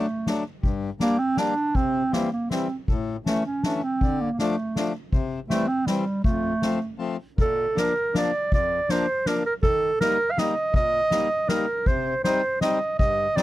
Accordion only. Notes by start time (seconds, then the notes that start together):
0.27 F#3 A3 D4
0.62 G2
1.00 G3 A#3 D4
1.37 G3 A#3 D4
1.75 C3
2.12 E3 G3 C4
2.50 E3 G3 C4
2.89 A2
3.26 E3 A3 C#4
3.65 E3 A3 C#4
4.03 D3
4.39 F3 A3 D4
4.76 F3 A3 D4
5.12 C3
5.49 E3 G3 C4
5.88 E3 G3 C4
6.26 F2
6.62 F3 A3 C4
6.99 F3 A3 C4
7.38 A#2
7.76 F3 A#3 D4
8.14 F3 A#3 D4
8.53 F2
8.90 F3 A#3 D4
9.26 F3 A#3 D4
9.64 D#3
10.01 G3 A#3 D#4
10.38 G3 A#3 D#4
10.73 A#2
11.11 G3 A#3 D#4
11.49 G3 A#3 D#4
11.86 C3
12.24 G3 C4 D#4
12.62 G3 C4 D#4
13.00 G2
13.36 G3 C4 D#4